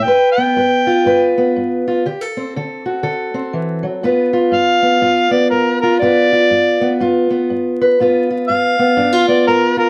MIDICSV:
0, 0, Header, 1, 3, 480
1, 0, Start_track
1, 0, Tempo, 495050
1, 57, Time_signature, 4, 2, 24, 8
1, 9594, End_track
2, 0, Start_track
2, 0, Title_t, "Harmonica"
2, 0, Program_c, 0, 22
2, 35, Note_on_c, 0, 79, 89
2, 304, Note_off_c, 0, 79, 0
2, 310, Note_on_c, 0, 79, 81
2, 1253, Note_off_c, 0, 79, 0
2, 4390, Note_on_c, 0, 77, 95
2, 5158, Note_on_c, 0, 74, 81
2, 5173, Note_off_c, 0, 77, 0
2, 5327, Note_off_c, 0, 74, 0
2, 5333, Note_on_c, 0, 70, 73
2, 5621, Note_off_c, 0, 70, 0
2, 5631, Note_on_c, 0, 70, 72
2, 5806, Note_off_c, 0, 70, 0
2, 5812, Note_on_c, 0, 74, 102
2, 6748, Note_off_c, 0, 74, 0
2, 8222, Note_on_c, 0, 77, 82
2, 8967, Note_off_c, 0, 77, 0
2, 8996, Note_on_c, 0, 74, 74
2, 9176, Note_off_c, 0, 74, 0
2, 9184, Note_on_c, 0, 70, 84
2, 9463, Note_off_c, 0, 70, 0
2, 9487, Note_on_c, 0, 70, 71
2, 9594, Note_off_c, 0, 70, 0
2, 9594, End_track
3, 0, Start_track
3, 0, Title_t, "Steel-string acoustic guitar"
3, 0, Program_c, 1, 25
3, 66, Note_on_c, 1, 43, 63
3, 75, Note_on_c, 1, 71, 60
3, 366, Note_on_c, 1, 59, 56
3, 505, Note_off_c, 1, 43, 0
3, 542, Note_off_c, 1, 71, 0
3, 546, Note_on_c, 1, 43, 63
3, 554, Note_on_c, 1, 71, 56
3, 841, Note_on_c, 1, 65, 59
3, 986, Note_off_c, 1, 43, 0
3, 1021, Note_on_c, 1, 43, 66
3, 1023, Note_off_c, 1, 71, 0
3, 1034, Note_on_c, 1, 71, 67
3, 1320, Note_off_c, 1, 59, 0
3, 1335, Note_on_c, 1, 59, 54
3, 1464, Note_off_c, 1, 43, 0
3, 1516, Note_on_c, 1, 43, 59
3, 1798, Note_off_c, 1, 65, 0
3, 1819, Note_on_c, 1, 65, 53
3, 1952, Note_off_c, 1, 43, 0
3, 1967, Note_off_c, 1, 71, 0
3, 1971, Note_off_c, 1, 59, 0
3, 1973, Note_off_c, 1, 65, 0
3, 1993, Note_on_c, 1, 50, 58
3, 1999, Note_on_c, 1, 67, 56
3, 2145, Note_off_c, 1, 67, 0
3, 2145, Note_on_c, 1, 69, 49
3, 2296, Note_on_c, 1, 60, 47
3, 2431, Note_off_c, 1, 50, 0
3, 2472, Note_off_c, 1, 69, 0
3, 2485, Note_on_c, 1, 50, 60
3, 2489, Note_on_c, 1, 69, 50
3, 2769, Note_on_c, 1, 66, 53
3, 2917, Note_off_c, 1, 50, 0
3, 2926, Note_off_c, 1, 69, 0
3, 2937, Note_on_c, 1, 50, 62
3, 2939, Note_on_c, 1, 69, 61
3, 3228, Note_off_c, 1, 60, 0
3, 3240, Note_on_c, 1, 60, 54
3, 3383, Note_off_c, 1, 50, 0
3, 3425, Note_on_c, 1, 52, 55
3, 3713, Note_on_c, 1, 54, 52
3, 3716, Note_off_c, 1, 52, 0
3, 3879, Note_off_c, 1, 69, 0
3, 3884, Note_off_c, 1, 60, 0
3, 3889, Note_off_c, 1, 66, 0
3, 3903, Note_off_c, 1, 54, 0
3, 3908, Note_on_c, 1, 43, 56
3, 3915, Note_on_c, 1, 59, 51
3, 3919, Note_on_c, 1, 65, 47
3, 3928, Note_on_c, 1, 71, 58
3, 4195, Note_off_c, 1, 65, 0
3, 4199, Note_on_c, 1, 65, 56
3, 4348, Note_off_c, 1, 43, 0
3, 4378, Note_on_c, 1, 43, 67
3, 4674, Note_off_c, 1, 59, 0
3, 4678, Note_on_c, 1, 59, 52
3, 4824, Note_off_c, 1, 43, 0
3, 4860, Note_on_c, 1, 43, 61
3, 4862, Note_off_c, 1, 65, 0
3, 4866, Note_on_c, 1, 65, 52
3, 5146, Note_off_c, 1, 59, 0
3, 5149, Note_on_c, 1, 59, 51
3, 5304, Note_off_c, 1, 43, 0
3, 5342, Note_on_c, 1, 43, 57
3, 5651, Note_off_c, 1, 65, 0
3, 5655, Note_on_c, 1, 65, 57
3, 5785, Note_off_c, 1, 43, 0
3, 5832, Note_off_c, 1, 59, 0
3, 5832, Note_on_c, 1, 43, 61
3, 5836, Note_on_c, 1, 59, 54
3, 5840, Note_off_c, 1, 65, 0
3, 5844, Note_on_c, 1, 65, 55
3, 5847, Note_off_c, 1, 71, 0
3, 5851, Note_on_c, 1, 71, 66
3, 6129, Note_off_c, 1, 65, 0
3, 6133, Note_on_c, 1, 65, 50
3, 6269, Note_off_c, 1, 43, 0
3, 6308, Note_on_c, 1, 43, 64
3, 6602, Note_off_c, 1, 59, 0
3, 6606, Note_on_c, 1, 59, 55
3, 6747, Note_off_c, 1, 43, 0
3, 6790, Note_on_c, 1, 43, 66
3, 6794, Note_off_c, 1, 65, 0
3, 6798, Note_on_c, 1, 65, 63
3, 7079, Note_off_c, 1, 59, 0
3, 7083, Note_on_c, 1, 59, 51
3, 7228, Note_off_c, 1, 43, 0
3, 7272, Note_on_c, 1, 43, 60
3, 7573, Note_off_c, 1, 71, 0
3, 7577, Note_on_c, 1, 71, 59
3, 7708, Note_off_c, 1, 43, 0
3, 7755, Note_on_c, 1, 43, 59
3, 7756, Note_off_c, 1, 59, 0
3, 7760, Note_on_c, 1, 59, 57
3, 7764, Note_off_c, 1, 65, 0
3, 7768, Note_on_c, 1, 65, 55
3, 7774, Note_off_c, 1, 71, 0
3, 7778, Note_on_c, 1, 71, 59
3, 8048, Note_off_c, 1, 65, 0
3, 8052, Note_on_c, 1, 65, 52
3, 8189, Note_off_c, 1, 43, 0
3, 8234, Note_on_c, 1, 43, 67
3, 8521, Note_off_c, 1, 59, 0
3, 8525, Note_on_c, 1, 59, 56
3, 8669, Note_off_c, 1, 43, 0
3, 8693, Note_off_c, 1, 65, 0
3, 8697, Note_on_c, 1, 43, 76
3, 8697, Note_on_c, 1, 62, 57
3, 8848, Note_off_c, 1, 62, 0
3, 8848, Note_on_c, 1, 65, 53
3, 8991, Note_off_c, 1, 59, 0
3, 9002, Note_on_c, 1, 59, 54
3, 9140, Note_off_c, 1, 43, 0
3, 9184, Note_on_c, 1, 43, 68
3, 9459, Note_off_c, 1, 65, 0
3, 9471, Note_on_c, 1, 65, 53
3, 9594, Note_off_c, 1, 43, 0
3, 9594, Note_off_c, 1, 59, 0
3, 9594, Note_off_c, 1, 65, 0
3, 9594, Note_off_c, 1, 71, 0
3, 9594, End_track
0, 0, End_of_file